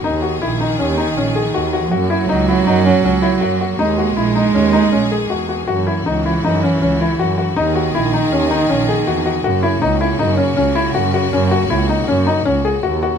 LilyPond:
<<
  \new Staff \with { instrumentName = "Felt piano" } { \time 5/4 \key fis \mixolydian \tempo 4 = 160 dis'8 fis'8 e'8 dis'8 cis'8 dis'8 cis'8 gis'8 fis'8 fis'8 | fis'8 e'8 dis'8 e'8 dis'8 cis'8 cis'8 e'8 fis'8 fis'8 | dis'8 fis'8 e'8 dis'8 cis'8 dis'8 cis'8 gis'8 fis'8 fis'8 | fis'8 e'8 dis'8 e'8 dis'8 cis'8 cis'8 e'8 fis'8 fis'8 |
dis'8 fis'8 e'8 dis'8 cis'8 dis'8 cis'8 gis'8 fis'8 fis'8 | fis'8 e'8 dis'8 e'8 dis'8 cis'8 cis'8 e'8 fis'8 fis'8 | cis'8 fis'8 e'8 dis'8 cis'8 dis'8 cis'8 gis'8 fis'8 fis'8 | }
  \new Staff \with { instrumentName = "String section" } { \time 5/4 \key fis \mixolydian << { <dis gis'>1~ <dis gis'>4 | <cis fis'>1~ <cis fis'>4 | <dis gis'>1~ <dis gis'>4 | <cis fis'>1~ <cis fis'>4 |
<dis gis'>1~ <dis gis'>4 | <cis fis'>1~ <cis fis'>4~ | <cis fis'>1~ <cis fis'>4 | } \\ { ais1~ ais4 | ais1~ ais4~ | ais1~ ais4~ | ais1~ ais4 |
ais1~ ais4 | ais1~ ais4~ | ais1~ ais4 | } >> }
  \new Staff \with { instrumentName = "Cello" } { \clef bass \time 5/4 \key fis \mixolydian dis1~ dis4 | fis1~ fis4 | gis1~ gis8 r8 | e1~ e4 |
dis1~ dis4 | cis1~ cis4~ | cis1~ cis8 r8 | }
  \new Staff \with { instrumentName = "Double bass" } { \clef bass \time 5/4 \key fis \mixolydian dis,4 ais,,4 dis,4 ais,,4 dis,4 | fis,4 cis,4 fis,4 cis,4 fis,4 | dis,4 ais,,4 dis,4 ais,,4 e,4 | fis,4 cis,4 fis,4 cis,4 fis,4 |
dis,4 ais,,4 dis,4 ais,,4 e,4 | fis,4 cis,4 fis,4 cis,4 fis,4 | fis,4 cis,4 fis,4 cis,4 dis,4 | }
>>